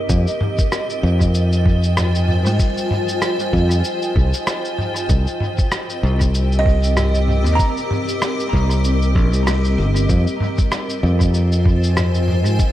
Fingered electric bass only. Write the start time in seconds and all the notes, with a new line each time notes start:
0.09 F2
1.03 F2
2.46 G#2
3.53 F2
4.16 C2
5.09 C2
6.03 C2
7.46 D#2
8.53 C2
9.16 A#1
9.34 C2
9.78 G1
10.09 F2
11.03 F2
12.46 G#2